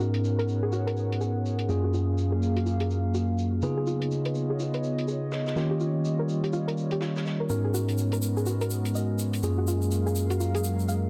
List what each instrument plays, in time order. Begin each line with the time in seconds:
Already playing: tine electric piano G#2 B3 C#4 D#4 F#4 A#4, ambient pad B3 G#4 A#4 C#5 F#5
0.00 shaker
0.14 closed hi-hat
0.24 shaker
0.39 synth arpeggio sound A#4, closed hi-hat
0.48 shaker
0.63 synth arpeggio sound G#4
0.72 synth arpeggio sound F#4, shaker
0.87 synth arpeggio sound A#4, closed hi-hat
0.97 shaker
1.12 closed hi-hat
1.21 synth arpeggio sound G#4, shaker
1.46 shaker
1.59 closed hi-hat
1.69 tine electric piano F#2 A#3 C#4 F4 G#4, ambient pad F#3 A#3 F5, synth arpeggio sound G#4, shaker
1.84 synth arpeggio sound F#4
1.93 synth arpeggio sound F4, shaker
2.18 shaker
2.32 synth arpeggio sound G#4
2.43 shaker
2.56 synth arpeggio sound F#4, closed hi-hat
2.66 synth arpeggio sound F4, shaker
2.80 synth arpeggio sound G#4, closed hi-hat
2.90 shaker
3.14 synth arpeggio sound F#4, shaker
3.38 shaker
3.62 tine electric piano C#3 B3 D#4 F4 G#4, ambient pad B3 F4 C#5 D#5, synth arpeggio sound B4, shaker
3.77 synth arpeggio sound G#4
3.87 synth arpeggio sound F4, shaker
4.02 closed hi-hat
4.11 shaker
4.25 synth arpeggio sound B4, closed hi-hat
4.35 shaker
4.50 synth arpeggio sound G#4
4.60 synth arpeggio sound F4, shaker
4.74 synth arpeggio sound B4, closed hi-hat
4.84 shaker
4.98 closed hi-hat
5.08 synth arpeggio sound G#4, shaker
5.32 snare, shaker
5.46 snare, shaker
5.56 tine electric piano D#3 A#3 C#4 F4 G4, ambient pad G3 F4, synth arpeggio sound A#4, snare, shaker
5.71 synth arpeggio sound G4
5.80 synth arpeggio sound F4, shaker
6.05 shaker
6.19 synth arpeggio sound A#4
6.29 shaker
6.43 synth arpeggio sound G4, closed hi-hat
6.53 synth arpeggio sound F4, shaker
6.68 synth arpeggio sound A#4, closed hi-hat
6.77 shaker
6.91 synth arpeggio sound G4, closed hi-hat
7.01 synth arpeggio sound F4, snare, shaker
7.16 snare, shaker
7.26 snare, shaker
7.40 synth arpeggio sound A#4
7.49 tine electric piano G#2 B3 C#4 D#4 F#4 A#4, ambient pad G#3 B3 F#4 A#4, synth arpeggio sound A#4, shaker
7.64 synth arpeggio sound G#4
7.74 synth arpeggio sound F#4, shaker
7.88 closed hi-hat, shaker
7.98 shaker
8.12 synth arpeggio sound A#4, closed hi-hat, shaker
8.22 shaker
8.37 synth arpeggio sound G#4, shaker
8.46 synth arpeggio sound F#4, shaker
8.61 synth arpeggio sound A#4, closed hi-hat, shaker
8.70 shaker
8.85 closed hi-hat, shaker
8.95 synth arpeggio sound D#5, shaker
9.19 shaker
9.33 closed hi-hat, shaker
9.43 tine electric piano F#2 A#3 C#4 F4 G#4, ambient pad F#3 A#4 F5, synth arpeggio sound G#4, shaker
9.58 synth arpeggio sound F#4
9.68 synth arpeggio sound F4, shaker
9.82 shaker
9.91 shaker
10.06 synth arpeggio sound G#4, shaker
10.15 shaker
10.30 synth arpeggio sound F#4, closed hi-hat, shaker
10.40 synth arpeggio sound F4, shaker
10.54 synth arpeggio sound G#4, closed hi-hat, shaker
10.64 shaker
10.79 shaker
10.88 synth arpeggio sound F5, shaker